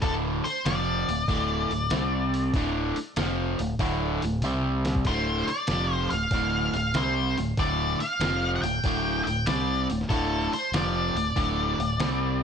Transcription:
0.02 D1 D2 A2 D3 A4, kick, open hi-hat
0.44 C5, muted fingered electric bass stroke, muted overdriven electric guitar stroke, open hi-hat
0.65 F1 F2 C3 F3 D5, snare, open hi-hat
1.09 D1 D2 A2, open hi-hat
1.28 D1 D2 A2 D3, kick, open hi-hat
1.70 D1 D2 A2, open hi-hat
1.90 C2 C3 G3 C4, snare, open hi-hat
2.34 open hi-hat
2.54 D1 D2 A2 D3, kick, open hi-hat
2.96 muted fingered electric bass stroke, muted overdriven electric guitar stroke, open hi-hat
3.16 F1 F2 C3 F3, snare, open hi-hat
3.59 D1 D2 A2, open hi-hat
3.79 D1 D2 A2 D3, kick, open hi-hat
4.22 D1 D2 A2, open hi-hat
4.42 C2 C3 G3 C4, open hi-hat, high tom
4.85 snare, open hi-hat
4.95 kick
5.05 D1 D2 A2 D3 C5, kick, open hi-hat
5.48 D5, muted fingered electric bass stroke, muted overdriven electric guitar stroke, open hi-hat
5.67 F1, snare, open hi-hat
5.71 F2 C3 F3
5.94 C5
6.10 D1 D2 F5, open hi-hat
6.15 A2
6.31 D1 D2 A2 D3, kick, open hi-hat
6.74 D1 D2 A2 F5, open hi-hat
6.94 C2 C3 G3 C4 C5, snare, open hi-hat
7.38 D1 D2 A2, open hi-hat
7.57 D1 D2 A2 D3 D5, kick, open hi-hat
8.00 F5, muted fingered electric bass stroke, muted overdriven electric guitar stroke, open hi-hat
8.19 F1 F2 C3 F3, snare, open hi-hat
8.56 F#5
8.62 D1 D2 A2 G5, open hi-hat
8.84 D1 D2 A2 D3, kick, open hi-hat
9.24 D1 D2 A2 G5, open hi-hat
9.46 C2 C3 G3 C4 D5, snare, open hi-hat
9.90 D1 D2 A2, open hi-hat
10.01 snare
10.09 D1 D2 A2 D3 A4, kick, open hi-hat
10.53 C5, muted fingered electric bass stroke, muted overdriven electric guitar stroke, open hi-hat
10.72 F1 F2 C3 F3 D5, snare, open hi-hat
11.15 D1 D2 A2, open hi-hat
11.36 D1 D2 A2 D3, kick, open hi-hat
11.79 D1 D2 A2, open hi-hat
11.99 C2 C3 G3 C4, snare, open hi-hat

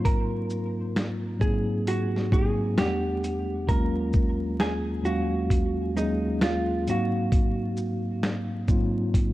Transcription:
Already playing: G#2 F#3 A#3 C4 D#4 F4
0.05 A#4, kick, closed hi-hat
0.50 shaker
0.96 finger snap, snare, closed hi-hat
1.39 G#2 F#3 A#3 C4 D#4 G#4, kick, shaker
1.87 F#4, closed hi-hat
2.16 snare
2.30 G#2 F#3 A#3 C4 D#4 G#4, kick, shaker
2.78 E2 F#3 A3 B3 D4 G4 F#5, finger snap, snare, closed hi-hat
2.85 G3
3.24 closed hi-hat, shaker
3.67 D#2 F#3 G#3 A#3 C#4 F4 A#4, kick, closed hi-hat
4.13 kick, shaker
4.60 G#4, finger snap, snare, closed hi-hat
5.03 D#2 F#3 G#3 A#3 C#4 F#4 F5, shaker
5.50 kick, closed hi-hat
5.95 D#2 F#3 G#3 A#3 C#4 D#4 G#4, shaker
6.41 F4, finger snap, snare, closed hi-hat
6.87 G#2 F#3 A#3 C4 D#4 F#4 F5, closed hi-hat, shaker
7.32 kick, closed hi-hat
7.77 shaker
8.23 finger snap, snare, closed hi-hat
8.67 G#2 F#3 A#3 C4 D#4 F4, kick, shaker
9.14 kick, closed hi-hat

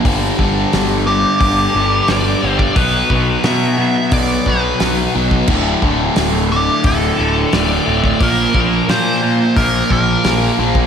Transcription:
0.04 G1 G2 D3 G3, kick, open hi-hat
0.38 G1 G2 D3 G3, kick
0.72 G1 G2 D3 G3, snare, open hi-hat
1.07 G2 D3 G3 G4
1.40 G1 G2 D3 G3 G4, kick, open hi-hat
1.74 G1 G2 D3 G3
2.08 G1 G2 D3 G3 D5, snare, open hi-hat
2.42 G1 G2 D3 G3
2.59 D5, kick
2.75 B1 B2 F#3 B3 B4, kick, open hi-hat
3.10 B1 B2 F#3 B3, kick
3.44 B2 F#3 B3 E5, snare, open hi-hat
3.77 B2 F#3 B3
4.11 B1 B2 F#3 B3 D5, kick, open hi-hat
4.46 B1 B2 F#3 B3 B4, kick
4.80 B1 B2 F#3 B3, snare, open hi-hat
5.15 B1 B2 F#3 B3
5.31 kick
5.47 D1 D2 A2 D3, kick, crash
5.82 D1 D2 A2 D3, kick
6.16 D1 D2 A2 D3, snare, open hi-hat
6.51 D2 A2 D3 G4
6.84 D1 D2 A2 D3 A4, kick, open hi-hat
7.18 D1 D2 A2 D3
7.52 D1 D2 A2 D3 D5, snare, open hi-hat
7.86 D1 D2 A2 D3
8.04 D5, kick
8.20 A#1 A#2 F3 A#3 A#4, kick, open hi-hat
8.54 A#1 A#2 F3 A#3, kick
8.88 A#2 F3 A#3 C5, snare, open hi-hat
9.22 A#2 F3 A#3
9.56 A#1 A#2 F3 A#3 A#4, kick, open hi-hat
9.90 A#1 A#2 F3 A#3 A#4, kick
10.24 A#1 A#2 F3 A#3, snare, open hi-hat
10.59 A#1 A#2 F3 A#3
10.75 kick

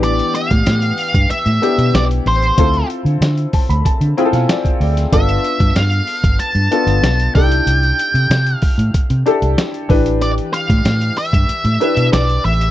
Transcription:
Already playing: A1 E3 B3 D4 G4
0.03 D5, closed hi-hat
0.19 closed hi-hat
0.35 F5, closed hi-hat
0.51 A2, kick, closed hi-hat
0.66 A2, snare, closed hi-hat
0.82 closed hi-hat
0.98 open hi-hat
1.14 G2, kick, closed hi-hat
1.30 E5, muted fingered electric bass stroke, closed hi-hat
1.46 A2, closed hi-hat
1.62 B3 D4 E4 G4, closed hi-hat
1.78 B2, closed hi-hat
1.94 B1 D5, snare, closed hi-hat
2.11 closed hi-hat
2.26 A1 C5, open hi-hat
2.42 closed hi-hat
2.58 D2 C4 E4 F4 A4, kick, closed hi-hat
2.74 closed hi-hat
2.90 closed hi-hat
3.05 D3, closed hi-hat
3.21 D3, snare, closed hi-hat
3.37 closed hi-hat
3.53 A5, kick, open hi-hat
3.69 D2 B5, closed hi-hat
3.85 A5, kick, closed hi-hat
4.01 D3, closed hi-hat
4.17 C4 E4 F4 G#4 G5, closed hi-hat
4.25 A4
4.33 B2 F5, snare, closed hi-hat
4.49 D5, snare, closed hi-hat
4.65 kick, closed hi-hat
4.80 D2 D5, open hi-hat
4.97 snare, closed hi-hat
5.12 G1 B3 D4 F4 A4 E5, kick, closed hi-hat
5.29 closed hi-hat
5.44 closed hi-hat
5.60 G2, kick, closed hi-hat
5.76 G2 F5, snare, closed hi-hat
5.92 closed hi-hat
6.07 open hi-hat
6.24 G1, kick, closed hi-hat
6.39 A5, muted fingered electric bass stroke, closed hi-hat
6.55 G2, closed hi-hat
6.71 B3 D4 F4 A4, closed hi-hat
6.86 G1, closed hi-hat
7.03 B1, snare, closed hi-hat
7.20 closed hi-hat
7.35 C2 D4 D#4 G4 A4 G5, kick, open hi-hat
7.42 E4
7.52 closed hi-hat
7.66 C2, closed hi-hat
7.83 closed hi-hat
7.99 closed hi-hat
8.14 C3, closed hi-hat
8.30 C3, snare, closed hi-hat
8.47 closed hi-hat
8.57 F5
8.62 kick, open hi-hat
8.78 A2, closed hi-hat
8.94 muted fingered electric bass stroke, kick, closed hi-hat
9.10 C3, closed hi-hat
9.26 D4 E4 G4 A4, closed hi-hat
9.42 C2, closed hi-hat
9.58 snare, closed hi-hat
9.74 closed hi-hat
9.89 A1 E3 D4 G4 B4, kick, open hi-hat
10.06 closed hi-hat
10.22 D5, closed hi-hat
10.38 closed hi-hat
10.54 F5, closed hi-hat
10.70 A2, kick, closed hi-hat
10.85 A2, snare, closed hi-hat
11.01 closed hi-hat
11.17 E5, open hi-hat
11.33 G2, kick, closed hi-hat
11.49 muted fingered electric bass stroke, closed hi-hat
11.65 A2, closed hi-hat
11.80 D4 E4 G4 B4, closed hi-hat
11.97 B2, closed hi-hat
12.13 B1 D5, snare, closed hi-hat
12.29 closed hi-hat
12.45 A1 E5, open hi-hat
12.61 closed hi-hat

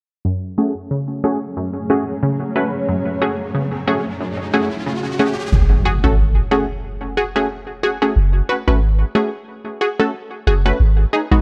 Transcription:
0.25 F#2 F#3 A3 C#4 G#4 C#5, riser
0.58 A3 C#4 F#4 G#4
0.91 C#3
1.24 A3 C#4 F#4 G#4
1.57 F#2
1.90 A3 C#4 F#4 G#4
2.23 C#3
2.56 A3 C#4 F#4 B4
2.89 F#2
3.22 A3 C#4 F#4 G#4
3.55 C#3
3.87 A3 C#4 F#4 G#4
4.21 F#2
4.54 A3 C#4 F#4 G#4
4.86 C#3
5.19 A3 C#4 F#4 G#4
5.52 F#1, impact
5.85 F#4 G#4
6.04 G#1 A3 C#4 F#4 A4
6.51 A3 C#4 F#4 G#4
7.17 F#4 G#4
7.36 A3 C#4 F#4 G#4
7.83 F#4 G#4
8.02 A3 C#4 F#4 G#4
8.16 F#1
8.49 F#4 B4
8.68 G#1 A3 C#4 F#4 B4
9.15 A3 C#4 F#4 G#4
9.81 F#4 G#4
10.00 A3 C#4 F#4 A4
10.47 F#1 F#4 G#4
10.66 A3 C#4 F#4 B4
10.80 G#1
11.13 D#4 G#4
11.31 A1 G#3 B3 D#4 F#4

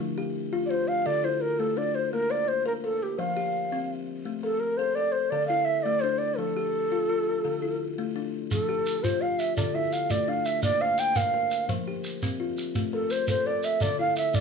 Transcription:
Already playing: D4 E4
0.00 F3
0.18 G4
0.53 F4
0.66 C5 D5
0.71 F4
0.88 F5
1.06 D3 A4 D5
1.24 E4 C5
1.41 A#4
1.59 A3 A4
1.77 D4 D5
1.95 C5
2.13 A#3 A#4
2.30 C5 D5
2.48 C5
2.66 A#4
2.84 A4 A#4
3.03 G4
3.11 G4
3.19 F3 C5 F5
3.37 G4
3.72 C4
4.25 A3
4.43 A4 A#4
4.60 A#4
4.77 A4 C5
4.95 A4 D5
5.12 C5
5.30 D3 A4 D5
5.47 E4 F5
5.65 E5
5.83 A3 D5
6.01 D4 C5
6.18 D5
6.37 F3 A4
6.56 G4
6.92 F4
7.09 F4
7.44 D3 A4
7.62 E4
7.98 A3
8.16 D4
8.51 F3 A4, shekere
8.69 G4
8.86 shekere
9.03 F4 C5, shekere
9.21 F4 F5
9.39 E5, shekere
9.56 D3 A4 D5, shekere
9.74 E4 E5
9.92 F5, shekere
10.10 A3 D5, shekere
10.28 D4 F5
10.45 E5, shekere
10.62 A#3 D5, shekere
10.81 C5 F5
10.98 G5, shekere
11.15 A#4 F5, shekere
11.34 A#4
11.51 shekere
11.69 F3 C5, shekere
11.87 G4
12.04 shekere
12.22 C4, shekere
12.40 F4
12.58 shekere
12.75 A3, shekere
12.93 A4 A#4
13.10 C5, shekere
13.27 A4 C5, shekere
13.46 A4 D5
13.63 E5, shekere
13.80 D3 A4 D5, shekere
13.99 E4 F5
14.16 E5, shekere
14.34 A3 D5, shekere

